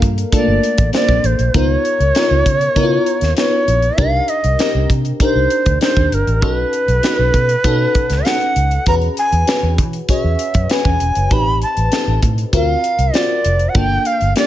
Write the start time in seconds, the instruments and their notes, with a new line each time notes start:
Already playing: fm electric piano A#3 D4 F4 A4 A#4
0.02 fingered electric bass G2, kick, closed hi-hat
0.18 closed hi-hat
0.32 fm electric piano A3 D4 F4 A4, shakuhachi D5, kick, closed hi-hat
0.39 fm electric piano A#3
0.47 fingered electric bass G1
0.63 closed hi-hat
0.78 fingered electric bass A1, kick, closed hi-hat
0.93 fm electric piano A#3 D4 F4 C5, shakuhachi D5, snare, closed hi-hat
1.08 fingered electric bass A#1, kick
1.24 fingered electric bass A1, shakuhachi C5, closed hi-hat
1.39 fingered electric bass A#1, closed hi-hat
1.54 fingered electric bass C#2, fm electric piano B3 D#4 F4 A#4, shakuhachi C5, kick, closed hi-hat
1.71 shakuhachi C#5
1.85 closed hi-hat
2.00 fingered electric bass C#2, closed hi-hat
2.15 fm electric piano B3 D#4 F4 A#4, snare, closed hi-hat
2.31 fingered electric bass C#2
2.46 fingered electric bass C#3, kick, closed hi-hat
2.61 closed hi-hat
2.76 fingered electric bass C#3, fm electric piano B3 D#4 E4 A#4, kick, closed hi-hat
2.83 fm electric piano F4
3.06 closed hi-hat
3.21 fingered electric bass D#2, snare, closed hi-hat
3.37 fm electric piano B3 D#4 F4 B4, shakuhachi C#5, snare, closed hi-hat
3.68 fingered electric bass A#1, closed hi-hat
3.82 closed hi-hat
3.97 fingered electric bass C2, fm electric piano D4 D#4 G4 A#4, shakuhachi F5, kick, closed hi-hat
4.28 shakuhachi D#5, closed hi-hat
4.44 fingered electric bass C2, closed hi-hat
4.59 fm electric piano C4 D#4 G4 A#4, snare, closed hi-hat
4.75 fingered electric bass C2
4.90 fingered electric bass C3, kick, closed hi-hat
5.05 closed hi-hat
5.20 fm electric piano D4 D#4 G4 A#4, shakuhachi C5, kick, closed hi-hat
5.35 fingered electric bass C2
5.50 closed hi-hat
5.66 fingered electric bass D2, kick, closed hi-hat
5.81 fm electric piano D4 D#4 G4 A#4, shakuhachi C5, snare, closed hi-hat
5.96 fingered electric bass D#2, kick
6.12 fingered electric bass G1, shakuhachi A#4, closed hi-hat
6.27 fingered electric bass A1, closed hi-hat
6.41 fingered electric bass B1, fm electric piano C#4 D#4 F#4 A4, shakuhachi B4, kick, closed hi-hat
6.73 closed hi-hat
6.88 fingered electric bass B1, closed hi-hat
7.03 fm electric piano C#4 D#4 F#4 B4, snare, closed hi-hat
7.19 fingered electric bass B1
7.34 fingered electric bass B2, kick, closed hi-hat
7.49 closed hi-hat
7.64 fingered electric bass B2, fm electric piano C#4 D#4 F#4 A4, kick, closed hi-hat
7.95 kick, closed hi-hat
8.10 fingered electric bass C#2, snare, closed hi-hat
8.25 fm electric piano C#4 D#4 F#4 A4, shakuhachi F#5, snare, closed hi-hat
8.41 closed hi-hat
8.56 fingered electric bass C#2, closed hi-hat
8.71 closed hi-hat
8.86 fingered electric bass E2, fm electric piano C#4 F#4 G#4 B4, shakuhachi A#5, kick, closed hi-hat
9.02 closed hi-hat
9.17 shakuhachi G#5, closed hi-hat
9.32 fingered electric bass E2, closed hi-hat
9.47 fm electric piano C#4 F#4 G#4 B4, snare, closed hi-hat
9.63 fingered electric bass E2
9.78 fingered electric bass E3, kick, closed hi-hat
9.93 closed hi-hat
10.09 fm electric piano C#4 F#4 G#4 C#5, shakuhachi E5, kick, closed hi-hat
10.24 fingered electric bass E2
10.39 closed hi-hat
10.54 fingered electric bass F#2, kick, closed hi-hat
10.70 fm electric piano C#4 F#4 G#4 B4, shakuhachi G#5, snare, closed hi-hat
10.85 fingered electric bass E2, kick
11.00 fingered electric bass E1, closed hi-hat
11.15 fingered electric bass F#1, closed hi-hat
11.30 fingered electric bass A1, fm electric piano C4 D#4 G4 B4, shakuhachi B5, kick, closed hi-hat
11.62 shakuhachi A5, closed hi-hat
11.77 fingered electric bass A1, closed hi-hat
11.92 fm electric piano C4 D#4 G4 A4, snare, closed hi-hat
12.07 fingered electric bass A1
12.22 fingered electric bass A2, kick, closed hi-hat
12.38 closed hi-hat
12.53 fingered electric bass D2, fm electric piano C4 F4 F#4 A#4, shakuhachi F5, kick, closed hi-hat
12.84 closed hi-hat
12.98 fingered electric bass C2, closed hi-hat
13.13 fm electric piano C4 F4 F#4 C5, shakuhachi D5, snare, closed hi-hat
13.45 fingered electric bass F1, closed hi-hat
13.59 closed hi-hat
13.69 shakuhachi F#5
13.75 fingered electric bass G1, fm electric piano A#3 D4 F4 A4, shakuhachi G5, kick, closed hi-hat
14.05 shakuhachi F5, closed hi-hat
14.21 fingered electric bass G1, closed hi-hat
14.36 fm electric piano A#3 D4 F4 G4, shakuhachi D5, snare, closed hi-hat